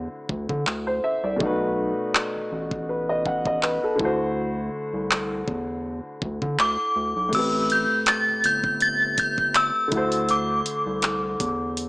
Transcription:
Already playing: D3 A3 E4 F#4 C5
0.29 D2, kick
0.49 D3, kick
0.67 D2, clap
0.87 C5
1.04 E5
1.24 C2 D5
1.36 B2 A3
1.40 B1 D#4 F#4, kick
1.45 B4
2.15 clap
2.35 A1
2.52 A1
2.71 kick
2.89 B4
3.09 D#5
3.26 F#5, kick
3.46 D#5, kick
3.63 B4, clap
3.84 A4
3.96 D3 A3, kick
4.00 D2 E4 F#4
4.05 C5
4.94 C2
5.11 clap
5.48 E2, kick
6.22 D2, kick
6.42 D3, kick
6.59 D2 D6, clap
6.96 D2
7.16 B1
7.29 A2 A3
7.33 A1 C4 G4 E6, kick, closed hi-hat, crash
7.38 B4
7.70 G6, closed hi-hat
8.06 A6, clap, closed hi-hat
8.27 G1
8.44 G1 G6, closed hi-hat
8.64 kick
8.80 A6, closed hi-hat
9.18 G6, kick, closed hi-hat
9.38 kick
9.54 E6, clap, closed hi-hat
9.88 D3 A3, closed hi-hat
9.92 D2 E4 F#4, kick
9.97 C5
10.12 closed hi-hat
10.29 D6, closed hi-hat
10.66 closed hi-hat
10.86 C2
11.02 clap, closed hi-hat
11.40 E2, kick, closed hi-hat
11.77 closed hi-hat

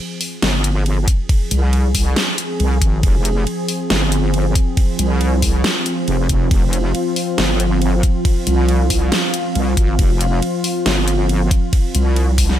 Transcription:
Already playing: F3 C4 G#4
0.21 open hi-hat
0.42 G1, snare, ride
0.64 closed hi-hat
0.86 ride
1.08 kick, closed hi-hat
1.29 kick, ride
1.51 C2, closed hi-hat
1.73 ride
1.95 kick, open hi-hat
2.16 snare, ride
2.38 closed hi-hat
2.60 C2, ride
2.82 G#1, kick, closed hi-hat
3.03 F1, kick, ride
3.25 closed hi-hat
3.47 ride
3.69 open hi-hat
3.90 G1, snare, ride
4.12 closed hi-hat
4.34 ride
4.55 kick, closed hi-hat
4.77 kick, ride
4.99 C2, closed hi-hat
5.21 ride
5.42 kick, open hi-hat
5.64 snare, ride
5.86 closed hi-hat
6.08 F1, ride
6.29 F1, kick, closed hi-hat
6.51 F1 F4, kick, ride
6.73 closed hi-hat
6.95 ride
7.16 open hi-hat
7.38 G1, snare, ride
7.60 closed hi-hat
7.82 ride
8.03 kick, closed hi-hat
8.25 kick, ride
8.47 C2, closed hi-hat
8.69 ride
8.90 kick, open hi-hat
9.12 snare, ride
9.34 closed hi-hat
9.55 C2, ride
9.77 G#1, kick, closed hi-hat
9.99 F1, kick, ride
10.21 closed hi-hat
10.42 ride
10.64 open hi-hat
10.86 G1, snare, ride
11.08 closed hi-hat
11.29 ride
11.51 kick, closed hi-hat
11.73 kick, ride
11.95 C2, closed hi-hat
12.16 ride
12.38 kick, open hi-hat
12.49 snare

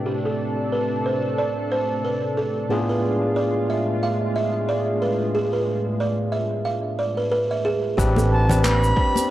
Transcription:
Already playing: A2 C3 A3 C4 D4 E4 G4
0.06 G4 A4
0.25 A4
0.72 B4
1.06 C5
1.38 D5
1.72 C5
2.05 B4
2.37 A4
2.69 A2 G#3 B3 D4 F4 G#4
2.89 B4
3.36 D5
3.70 E5
4.03 F5
4.36 E5
4.69 D5
5.02 B4
5.35 G#4
5.53 B4
6.00 D5
6.32 E5
6.65 F5
6.99 D5
7.17 B4
7.31 B4
7.51 E5
7.65 G#4
7.97 A1 C4 D4 G4 B4, kick, closed hi-hat, cabasa
8.16 A4, high conga, cabasa
8.32 A5
8.49 C4 D4 G4 B4, closed hi-hat, low conga, cabasa
8.63 B4 B5, clap, closed hi-hat, high conga, cabasa
8.84 cabasa
8.96 C4 D4 G4 C5 B5, kick
9.16 closed hi-hat, high bongo, high conga, cabasa

